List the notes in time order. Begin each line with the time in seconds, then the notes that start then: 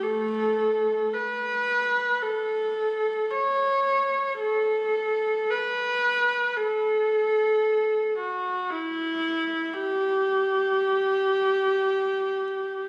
0.02 A3 A4
1.13 B4
2.22 A4
3.30 C#5
4.40 A4
5.50 B4
6.56 A4
8.18 F#4
8.70 E4
9.73 G4